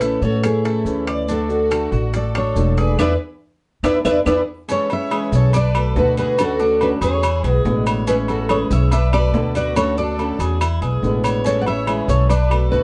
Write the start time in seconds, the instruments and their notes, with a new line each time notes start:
Already playing: upright bass A1, violin section E4, nylon-string guitar B4
0.00 steel-string acoustic guitar E3 A3 C#4 E4, cuban tres A4, high timbale, maracas
0.21 upright bass A2, steel-string acoustic guitar A3 C#4 E4, violin section F#4, nylon-string guitar A4, cuban tres C#5, maracas
0.43 violin section E4, nylon-string guitar G#4, muted steel-string acoustic guitar stroke, high timbale, claves, maracas
0.64 cuban tres A3, steel-string acoustic guitar A3 C#4 E4, high timbale, maracas
0.85 upright bass D2, steel-string acoustic guitar E3 A3 C#4 E4, maracas
1.07 cuban tres D5, high timbale, claves, maracas
1.28 steel-string acoustic guitar D3 A3 D4 F#4, cuban tres D4, violin section F#4, nylon-string guitar A4, maracas
1.49 steel-string acoustic guitar A3 D4 F#4, maracas
1.71 steel-string acoustic guitar D3 A3 D4 F#4, cuban tres A4, high timbale, claves, maracas
1.92 upright bass A1, steel-string acoustic guitar A3 D4 F#4, cuban tres F#4, maracas
2.13 violin section A4, nylon-string guitar D5, muted steel-string acoustic guitar stroke, high timbale, maracas
2.34 steel-string acoustic guitar A3 D4 F#4, cuban tres D4, violin section A4, nylon-string guitar C#5, high timbale, claves, maracas
2.55 upright bass E1, steel-string acoustic guitar D3 A3 D4 F#4, maracas
2.77 cuban tres G#4, violin section B4, nylon-string guitar D5, high timbale, maracas
2.98 upright bass E2, steel-string acoustic guitar B3 D4 E4, violin section E4 G#4 B4, cuban tres B4 D5 E5, nylon-string guitar B4 D5 E5, high timbale, claves, maracas
3.83 upright bass E2, steel-string acoustic guitar B3 D4 E4, violin section E4 G#4 B4, cuban tres B4 D5 E5, nylon-string guitar B4 D5 E5, high timbale, claves, maracas
4.04 upright bass E2, steel-string acoustic guitar B3 D4 E4, violin section E4 G#4 B4, cuban tres B4 D5 E5, nylon-string guitar B4 D5 E5, high timbale, claves, maracas
4.25 upright bass E2, steel-string acoustic guitar B3 D4 E4, violin section E4 G#4 B4, cuban tres B4 D5 E5, nylon-string guitar B4 D5 E5, high timbale, claves, maracas
4.68 steel-string acoustic guitar E3 G#3 C#4 E4, cuban tres C#4, violin section A4, nylon-string guitar C#5, low agogo, maracas
4.89 steel-string acoustic guitar G#3 C#4 E4, violin section C#5, nylon-string guitar E5, low agogo, maracas
5.10 steel-string acoustic guitar E3 G#3 C#4 E4, cuban tres G#4, low agogo, claves, maracas
5.32 upright bass B1, steel-string acoustic guitar G#3 C#4 E4, violin section A4, nylon-string guitar C#5, maracas
5.53 cuban tres D4, violin section B4, nylon-string guitar D5, muted steel-string acoustic guitar stroke, low agogo, maracas
5.74 steel-string acoustic guitar A3 B3 F#4, cuban tres A4, low agogo, claves, maracas
5.95 upright bass D2, steel-string acoustic guitar B2 D3 A3 B3 F#4, violin section F#4, nylon-string guitar B4, low timbale, maracas
6.17 cuban tres F#4, violin section G#4, nylon-string guitar B4, low agogo, maracas
6.38 steel-string acoustic guitar D3 A3 C#4 F#4, violin section F#4, nylon-string guitar A4, low agogo, claves, maracas
6.60 steel-string acoustic guitar A3 C#4 F#4, cuban tres D4, maracas
6.80 steel-string acoustic guitar D3 A3 C#4 F#4, violin section F#4, nylon-string guitar B4, low agogo, maracas
7.01 upright bass E2, steel-string acoustic guitar A3 C#4 F#4, cuban tres G#4, violin section G#4, nylon-string guitar C#5, low agogo, maracas
7.23 cuban tres E4, muted steel-string acoustic guitar stroke, low agogo, claves, maracas
7.43 upright bass B1, steel-string acoustic guitar G#3 B3 E4, violin section F#4, cuban tres G#4, low agogo, maracas
7.49 nylon-string guitar B4
7.65 upright bass A1, steel-string acoustic guitar B2 D3 G#3 B3 E4, low timbale, maracas
7.86 cuban tres C#5, low agogo, claves, maracas
8.07 steel-string acoustic guitar E3 G#3 C#4 E4, cuban tres C#4, violin section G#4, nylon-string guitar B4, low agogo, maracas
8.28 steel-string acoustic guitar G#3 C#4 E4, violin section F#4, nylon-string guitar A4, low agogo, maracas
8.49 steel-string acoustic guitar E3 G#3 C#4 E4, cuban tres G#4, violin section A4, nylon-string guitar C#5, low agogo, claves, maracas
8.70 upright bass B1, steel-string acoustic guitar G#3 C#4 E4, violin section C#5, nylon-string guitar E5, maracas
8.91 cuban tres D4, violin section B4, nylon-string guitar E5, muted steel-string acoustic guitar stroke, low agogo, maracas
9.12 steel-string acoustic guitar A3 B3 F#4, cuban tres A4, violin section B4, nylon-string guitar D5, low agogo, claves, maracas
9.33 upright bass D2, steel-string acoustic guitar B2 D3 A3 B3 F#4, low timbale, maracas
9.55 cuban tres F#4, violin section B4, nylon-string guitar D5, low agogo, maracas
9.76 steel-string acoustic guitar D3 A3 C#4 F#4, violin section A4, nylon-string guitar C#5, low agogo, claves, maracas
9.97 steel-string acoustic guitar A3 C#4 F#4, cuban tres D4, violin section A4, nylon-string guitar D5, maracas
10.18 steel-string acoustic guitar D3 A3 C#4 F#4, low agogo, maracas
10.39 upright bass E2, steel-string acoustic guitar A3 C#4 F#4, cuban tres G#4, low agogo, maracas
10.60 cuban tres E4, muted steel-string acoustic guitar stroke, low agogo, claves, maracas
10.81 upright bass B1, steel-string acoustic guitar G#3 B3 E4, cuban tres G#4, low agogo, maracas
11.02 upright bass A1, steel-string acoustic guitar B2 D3 G#3 B3 E4, maracas
11.24 cuban tres C#5, low agogo, claves, maracas
11.44 steel-string acoustic guitar E3 G#3 C#4 E4, cuban tres C#4, violin section A4, nylon-string guitar C#5, low agogo, maracas
11.59 violin section D5, nylon-string guitar F#5
11.65 steel-string acoustic guitar G#3 C#4 E4, violin section C#5, nylon-string guitar E5, low agogo, maracas
11.86 steel-string acoustic guitar E3 G#3 C#4 E4, cuban tres G#4, low agogo, claves, maracas
12.07 upright bass B1, steel-string acoustic guitar G#3 C#4 E4, violin section A4, nylon-string guitar C#5, maracas
12.29 cuban tres D4, violin section B4, nylon-string guitar D5, muted steel-string acoustic guitar stroke, low agogo, maracas
12.50 steel-string acoustic guitar A3 B3 F#4, cuban tres A4, low agogo, claves, maracas
12.70 upright bass D2, steel-string acoustic guitar B2 D3 A3 B3 F#4, violin section F#4, nylon-string guitar B4, maracas